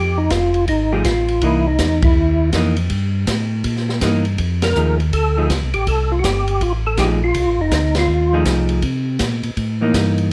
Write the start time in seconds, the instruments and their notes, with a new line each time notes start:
Already playing: tonewheel organ F2 G4
0.18 tonewheel organ D#4
0.30 tonewheel organ F1 F4, kick, snare, hi-hat pedal, ride
0.54 ride
0.68 tonewheel organ G#1 D#4, kick, ride
0.92 hollow-body jazz guitar F3 A3 D#4 G#4, tonewheel organ G4
1.04 tonewheel organ A1 F4, kick, snare, hi-hat pedal, ride
1.28 ride
1.41 tonewheel organ C2 E4, hollow-body jazz guitar E3 A#3 D#4, kick, ride
1.67 tonewheel organ D#4
1.79 tonewheel organ E2 D#4, kick, snare, hi-hat pedal, ride
2.02 tonewheel organ E4, kick, ride
2.16 tonewheel organ D#2
2.53 tonewheel organ F2, hollow-body jazz guitar E3 A#3 D#4, kick, snare, hi-hat pedal, ride
2.77 ride
2.90 tonewheel organ G2, kick, ride
3.27 tonewheel organ A2, kick, snare, hi-hat pedal, ride
3.64 tonewheel organ A#2, kick, ride
3.77 snare
3.89 snare
4.01 tonewheel organ G2, hollow-body jazz guitar E3 A#3 D#4, kick, snare, hi-hat pedal, ride
4.25 ride
4.38 tonewheel organ F2, kick, ride
4.62 tonewheel organ A#4, snare, ride
4.76 tonewheel organ D#2, hollow-body jazz guitar F3 A3 D#4 G#4, hi-hat pedal
5.00 ride
5.13 tonewheel organ D2 A4, kick, ride
5.37 hollow-body jazz guitar F3 A3 D#4 G#4
5.50 tonewheel organ C#2, kick, snare, hi-hat pedal, ride
5.63 tonewheel organ C2
5.74 tonewheel organ A1 G4, ride
5.87 tonewheel organ C2 A4, kick, ride
6.12 tonewheel organ F4
6.19 tonewheel organ F#4
6.24 tonewheel organ G1 G4, kick, snare, hi-hat pedal, ride
6.48 ride
6.61 tonewheel organ A1 F4, kick, ride
6.87 tonewheel organ A4
6.97 tonewheel organ A#1 G4, hollow-body jazz guitar F3 A3 D#4 G#4, kick, snare, hi-hat pedal, ride
7.24 tonewheel organ F4
7.34 tonewheel organ C2, kick, ride
7.47 tonewheel organ A1
7.59 tonewheel organ F1 D#4
7.71 tonewheel organ D2 D#4, kick, snare, hi-hat pedal, ride
7.95 snare, ride
7.99 tonewheel organ F4
8.08 tonewheel organ D#2
8.33 hollow-body jazz guitar F3 A3 D#4 G#4
8.45 tonewheel organ C2, kick, snare, hi-hat pedal, ride
8.69 ride
8.82 tonewheel organ C3, kick, ride
9.19 tonewheel organ A#2, kick, snare, hi-hat pedal, ride
9.43 tonewheel organ A#2, ride
9.57 tonewheel organ A2, kick, ride
9.81 hollow-body jazz guitar E3 A#3 D#4
9.94 tonewheel organ G2, kick, snare, hi-hat pedal, ride
10.18 ride